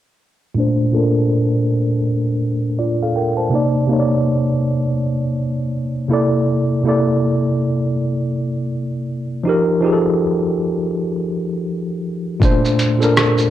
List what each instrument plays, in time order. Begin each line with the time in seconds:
0.55 tine electric piano A#2 A3 D4
0.60 tine electric piano C5
0.92 tine electric piano A#2 D4 A4
0.97 tine electric piano A#4
2.79 tine electric piano F4 D5
3.03 tine electric piano A4 F5
3.16 tine electric piano A#4 G5
3.37 tine electric piano C5 A5
3.49 tine electric piano C3 A#3
3.53 tine electric piano D#4 D5
3.88 tine electric piano C3 A#3 D#4
3.93 tine electric piano C#5
4.00 tine electric piano D5
6.08 tine electric piano C3 A#3 E4 A4
6.13 tine electric piano D5
6.83 tine electric piano C3 A#3 E4
6.88 tine electric piano A4 D5
9.44 tine electric piano F3 D#4 G4
9.49 tine electric piano A#4
9.81 tine electric piano F3 D#4 G4
9.86 tine electric piano G#4
9.92 tine electric piano A4
12.40 tine electric piano A#2 A3 D4, kick, shaker
12.45 tine electric piano C5
12.65 shaker
12.79 closed hi-hat, shaker
12.99 tine electric piano A#2 D4 A4, shaker
13.04 tine electric piano A#4
13.17 cross-stick, shaker
13.38 shaker